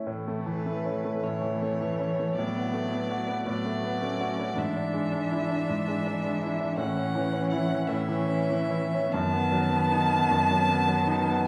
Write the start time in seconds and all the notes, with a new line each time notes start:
0.06 A2 E3 A3
0.28 A3
0.45 E3 B4
0.66 A3
0.85 C#4
1.05 A3
1.23 A2 E3 A3 C#5
1.42 E3
1.62 A3
1.81 E3
2.00 C#4
2.19 A3
2.36 A2 F#3 B3 D5
2.56 B3
2.74 A3
2.93 B3
3.11 F#4
3.28 B3
3.46 A2 F#3 B3 D5
3.66 A3
3.84 B3
4.01 A3 C#4
4.21 F#4
4.39 B3
4.57 G#2 E3 D4 E5
4.76 D4
4.94 G#3
5.13 D4
5.32 E4
5.50 D4
5.69 G#2
5.88 G#3
6.07 D4
6.24 G#3
6.43 E4
6.60 D4
6.77 A2 E3 C#4 F#5
6.96 C#4
7.15 E3
7.33 C#4
7.50 E4 F#5
7.70 C#4
7.87 A2 E3 C#4 E5
8.09 E3
8.29 C#4
8.50 E3
8.71 E4
8.94 C#4
9.12 F#2 D#3 B3 A5
9.33 B3
9.52 F#3
9.72 B3
9.91 D#4
10.12 B3
10.31 F#2
10.51 F#3
10.69 B3
10.88 F#3
11.07 D#4
11.26 B3